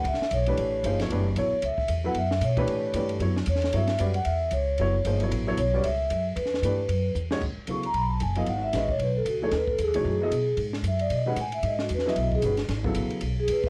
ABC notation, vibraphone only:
X:1
M:4/4
L:1/8
Q:"Swing" 1/4=228
K:F#phr
V:1 name="Vibraphone"
e2 c4- c z | z2 c2 e2 z f | e2 c4- c z | z2 c2 e2 z f |
e2 c4- c z | z2 c2 e3 z | B6 z2 | [K:G#phr] z2 c' ^a b =a g ^e |
f e d c B A F A | B A G F G4 | z2 e =d ^d f g e | d F B e d G z2 |
z4 z G B z |]